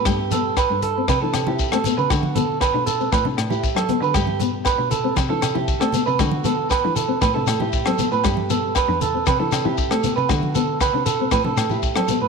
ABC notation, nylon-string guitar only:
X:1
M:4/4
L:1/16
Q:1/4=117
K:G
V:1 name="Nylon-string guitar"
A,2 B,2 z D2 C2 D2 E2 C B,2 | A,2 B,2 z D2 C2 D2 E2 z B,2 | A,2 B,2 z D2 C2 D2 E2 C B,2 | A,2 B,2 z D2 C2 D2 E2 C B,2 |
A,2 B,2 z D2 C2 D2 E2 C B,2 | A,2 B,2 z D2 C2 D2 E2 C B,2 |]